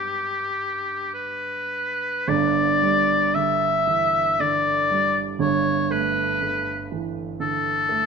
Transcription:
0.00 2.21 G2 soft
0.00 2.22 F#3 soft
0.00 2.22 B3 soft
0.00 2.23 D4 soft
0.00 1.09 G4 medium
0.00 2.23 A4 soft
1.14 2.30 B4 medium
2.28 5.36 G1 medium
2.28 5.37 G2 medium
2.28 3.36 D5 loud
2.82 3.66 G3 medium
3.35 4.19 D3 medium
3.35 4.42 E5 loud
3.87 4.39 E3 soft
4.40 5.21 D3 medium
4.40 5.24 D5 loud
4.90 5.41 G3 medium
5.39 8.06 G1 medium
5.39 8.06 G2 medium
5.39 5.93 C#5 medium
5.91 6.71 A3 medium
5.91 6.91 B4 medium
6.42 7.21 D3 medium
6.92 7.41 E3 medium
7.40 8.06 D3 medium
7.40 8.06 A4 loud
7.89 8.06 A3 medium

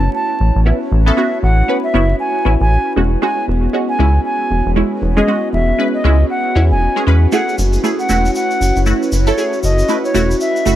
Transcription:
0.00 2.93 A3 medium
0.00 10.76 C#4 medium
0.00 7.29 E4 medium
0.00 2.93 F#4 medium
0.00 10.76 F#4 medium
0.00 10.76 B4 medium
0.00 7.29 C#5 medium
0.00 0.11 A5 loud
0.15 0.60 A5 loud
0.40 0.51 A1 medium
0.56 0.72 A1 medium
0.65 0.88 B3 medium
0.65 0.88 C#4 medium
0.65 0.88 E4 medium
0.92 1.11 A1 loud
1.06 1.16 B3 loud
1.06 1.16 C#4 medium
1.06 1.16 A4 loud
1.06 1.39 E5 medium
1.17 1.33 B3 medium
1.17 1.33 C#4 medium
1.17 1.33 F#4 loud
1.43 1.63 A1 loud
1.43 1.78 F#5 loud
1.68 1.90 B3 medium
1.68 1.91 C#4 medium
1.68 1.91 B4 medium
1.84 2.16 E5 medium
1.94 2.14 F#1 medium
1.94 2.10 B3 medium
1.94 2.10 C#4 medium
1.94 2.10 E4 loud
2.20 2.55 G#5 medium
2.45 2.56 A1 medium
2.45 2.61 B3 medium
2.45 2.61 C#4 medium
2.45 2.61 E4 loud
2.61 2.77 A1 medium
2.61 2.93 G#5 loud
2.96 3.16 E1 loud
2.96 3.12 G#3 medium
2.96 7.29 B3 medium
2.96 3.12 C#4 medium
2.96 3.13 F#4 medium
2.96 7.29 G#4 medium
3.22 3.71 G#3 medium
3.22 3.71 C#4 medium
3.22 3.72 F#4 loud
3.22 3.45 G#5 loud
3.48 3.68 E1 loud
3.73 3.96 G#3 medium
3.73 3.96 C#4 medium
3.73 3.96 F#4 medium
3.89 4.21 G#5 medium
3.99 4.19 C#2 medium
3.99 4.15 G#3 medium
3.99 4.15 C#4 medium
3.99 4.15 E4 medium
4.25 4.71 G#5 medium
4.51 4.61 E1 medium
4.66 4.83 E1 medium
4.76 4.98 G#3 medium
4.76 4.98 C#4 medium
4.76 4.99 E4 medium
5.02 5.21 E1 loud
5.17 5.26 G#3 loud
5.17 5.26 C#4 medium
5.17 5.26 G#4 loud
5.17 5.49 D#5 loud
5.27 5.43 G#3 medium
5.27 5.43 C#4 medium
5.27 5.44 F#4 loud
5.53 5.73 E1 loud
5.53 5.88 E5 loud
5.78 6.01 G#3 medium
5.78 6.01 C#4 medium
5.78 6.01 B4 medium
5.94 6.26 D#5 loud
6.04 6.24 C#2 medium
6.04 6.20 G#3 loud
6.04 6.20 C#4 medium
6.04 6.20 E4 loud
6.30 6.65 F#5 medium
6.55 6.72 E2 medium
6.55 6.71 G#3 medium
6.55 6.71 C#4 medium
6.55 6.72 E4 medium
6.71 6.88 E1 loud
6.71 7.03 G#5 loud
6.96 7.04 G#3 medium
6.96 7.05 C#4 medium
6.96 7.05 G#4 medium
7.07 7.27 E2 medium
7.07 7.22 G#3 medium
7.07 7.23 C#4 medium
7.07 7.23 B4 medium
7.32 7.81 A3 medium
7.32 10.76 A3 medium
7.32 10.76 E4 medium
7.32 7.82 E4 medium
7.32 10.76 F#4 medium
7.32 7.82 G#4 loud
7.32 10.76 C#5 medium
7.32 7.56 F#5 loud
7.32 shaker medium
7.49 shaker soft
7.58 7.78 F#1 loud
7.58 10.76 E4 medium
7.58 shaker medium
7.73 shaker soft
7.83 8.06 A3 medium
7.83 8.06 E4 medium
7.83 8.06 G#4 medium
7.83 shaker medium
7.99 8.31 F#5 medium
7.99 shaker soft
8.09 8.29 E1 medium
8.09 8.25 A3 medium
8.09 8.25 E4 medium
8.09 8.26 F#4 medium
8.09 shaker medium
8.25 shaker soft
8.35 8.81 F#5 medium
8.35 shaker medium
8.51 shaker soft
8.61 8.72 F#1 medium
8.61 shaker medium
8.76 8.93 F#1 medium
8.76 shaker soft
8.86 9.08 A3 medium
8.86 9.09 E4 medium
8.86 9.09 F#4 medium
8.86 shaker soft
9.03 shaker soft
9.12 9.32 F#1 loud
9.12 shaker medium
9.27 9.36 A3 loud
9.27 9.36 E4 medium
9.27 9.37 A4 loud
9.27 9.59 C#5 medium
9.27 shaker soft
9.37 9.53 A3 medium
9.37 9.53 E4 medium
9.37 9.54 G#4 medium
9.37 shaker medium
9.53 shaker soft
9.63 9.83 F#1 loud
9.63 9.98 D#5 loud
9.63 shaker loud
9.79 shaker soft
9.89 10.11 A3 medium
9.89 10.11 E4 medium
9.89 10.12 B4 medium
9.89 shaker medium
10.04 10.36 C#5 loud
10.04 shaker soft
10.14 10.34 E1 medium
10.14 10.30 A3 medium
10.14 10.30 E4 medium
10.14 10.31 F#4 loud
10.14 shaker loud
10.31 shaker soft
10.41 10.75 E5 loud
10.41 shaker medium
10.56 shaker soft
10.66 10.76 F#1 medium
10.66 10.76 A3 medium
10.66 10.76 E4 medium
10.66 10.76 F#4 loud
10.66 shaker loud

